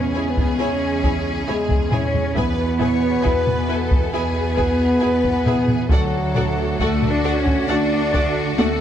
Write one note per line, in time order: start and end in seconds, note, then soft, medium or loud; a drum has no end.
0.00 0.49 E2 medium
0.00 2.33 C#3 medium
0.00 2.32 G#3 soft
0.00 0.29 C#4 medium
0.00 2.31 C#4 medium
0.00 2.34 E4 medium
0.00 2.36 G#4 medium
0.00 2.37 G#4 medium
0.00 0.31 C#5 medium
0.00 2.34 G#5 medium
0.14 0.23 E4 medium
0.14 0.24 G#4 medium
0.14 0.23 C#5 soft
0.14 0.22 G#5 medium
0.29 0.59 B3 medium
0.29 0.60 B3 medium
0.29 0.62 B4 medium
0.37 taiko medium
0.59 1.37 E2 medium
0.59 1.46 C#4 medium
0.59 1.48 C#4 medium
0.59 0.67 E4 medium
0.59 0.67 G#4 medium
0.59 0.67 C#5 medium
0.59 1.21 C#5 medium
0.59 0.67 G#5 medium
1.03 1.11 E4 medium
1.03 1.11 G#4 medium
1.03 1.12 C#5 medium
1.03 1.12 G#5 soft
1.03 taiko medium
1.47 2.26 E2 medium
1.47 1.92 G#3 medium
1.47 1.55 E4 medium
1.47 1.55 G#4 medium
1.47 1.89 G#4 medium
1.47 1.56 C#5 medium
1.47 1.56 G#5 soft
1.70 taiko medium
1.91 2.36 C#4 medium
1.91 2.00 E4 medium
1.91 1.99 G#4 soft
1.91 2.38 C#5 medium
1.91 2.01 C#5 medium
1.91 2.00 G#5 soft
1.91 taiko low-mid medium
2.14 taiko low-mid soft
2.35 3.15 E2 medium
2.35 5.73 B2 medium
2.35 5.91 B3 medium
2.35 4.13 B3 loud
2.35 4.11 B3 medium
2.35 5.73 B3 medium
2.35 2.43 E4 medium
2.35 5.87 E4 medium
2.35 2.43 G#4 medium
2.35 5.87 B4 medium
2.35 2.44 B4 medium
2.35 4.13 B4 medium
2.35 2.81 B4 medium
2.35 5.87 G#5 medium
2.35 2.45 G#5 medium
2.35 taiko medium
2.79 2.87 E4 medium
2.79 2.87 G#4 medium
2.79 2.89 B4 soft
2.79 3.25 C#5 medium
2.79 2.88 G#5 soft
2.79 taiko low-mid medium
3.22 4.04 E2 medium
3.22 3.31 E4 medium
3.22 3.31 G#4 medium
3.22 3.30 B4 medium
3.22 3.30 G#5 medium
3.22 taiko medium
3.27 3.70 B4 medium
3.47 taiko low-mid medium
3.68 3.76 E4 medium
3.68 4.14 A4 medium
3.68 3.76 B4 medium
3.68 3.78 B4 medium
3.68 3.77 G#5 medium
3.91 taiko medium
4.12 4.92 E2 medium
4.12 5.87 B3 medium
4.12 5.71 B3 loud
4.12 4.20 E4 medium
4.12 4.21 G#4 medium
4.12 5.01 G#4 medium
4.12 5.88 B4 medium
4.12 4.22 B4 medium
4.12 4.21 G#5 medium
4.56 4.64 E4 medium
4.56 4.64 G#4 medium
4.56 4.65 B4 medium
4.56 4.65 G#5 medium
4.56 taiko medium
5.00 5.81 E2 medium
5.00 5.09 E4 medium
5.00 5.09 G#4 medium
5.00 5.09 B4 medium
5.00 5.48 B4 medium
5.00 5.08 G#5 medium
5.24 taiko medium
5.46 5.55 E4 medium
5.46 5.54 G#4 medium
5.46 5.91 G#4 medium
5.46 5.55 B4 medium
5.46 5.55 G#5 medium
5.46 taiko low-mid medium
5.68 taiko low-mid soft
5.88 6.70 D2 medium
5.88 8.81 D3 medium
5.88 6.77 F#3 loud
5.88 6.78 F#3 medium
5.88 8.81 A3 medium
5.88 8.81 D4 medium
5.88 8.81 F#4 medium
5.88 6.82 F#4 medium
5.88 5.99 F#4 medium
5.88 8.81 A4 medium
5.88 6.77 A4 medium
5.88 5.99 A4 medium
5.88 6.00 D5 medium
5.88 8.81 F#5 medium
5.88 taiko loud
5.93 6.01 F#5 medium
6.35 6.44 F#4 medium
6.35 6.44 A4 medium
6.35 6.43 D5 medium
6.35 6.43 F#5 medium
6.35 taiko low-mid medium
6.79 7.58 D2 medium
6.79 7.09 A3 medium
6.79 6.88 F#4 medium
6.79 7.70 F#4 medium
6.79 7.12 A4 medium
6.79 6.89 A4 medium
6.79 6.89 D5 medium
6.79 6.89 F#5 medium
6.79 taiko medium
7.02 taiko low-mid medium
7.09 7.39 D4 medium
7.09 7.40 D5 medium
7.24 7.33 F#4 medium
7.24 7.33 A4 medium
7.24 7.32 D5 medium
7.24 7.32 F#5 medium
7.38 7.68 C#4 medium
7.38 7.69 C#5 medium
7.43 7.71 C#4 loud
7.43 taiko medium
7.67 8.47 D2 medium
7.67 8.57 D4 loud
7.67 7.77 F#4 medium
7.67 8.81 F#4 medium
7.67 7.77 A4 medium
7.67 7.77 D5 medium
7.67 8.29 D5 medium
7.67 7.76 F#5 medium
7.72 8.60 D4 loud
8.13 8.21 F#4 medium
8.13 8.21 A4 medium
8.13 8.22 D5 medium
8.13 8.22 F#5 medium
8.13 taiko medium
8.57 8.81 D2 medium
8.57 8.81 A3 medium
8.57 8.66 F#4 medium
8.57 8.66 A4 medium
8.57 8.81 A4 medium
8.57 8.67 D5 medium
8.57 8.67 F#5 medium
8.57 taiko high medium